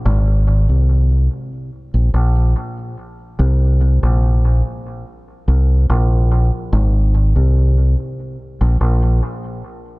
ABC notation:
X:1
M:4/4
L:1/16
Q:1/4=72
K:Ablyd
V:1 name="Fingered electric bass" clef=bass
A,,,3 C,,3 z3 B,,, B,,,2 z4 | C,,3 B,,,3 z4 C,,2 B,,,3 z | A,,,3 C,,3 z3 B,,, B,,,2 z4 |]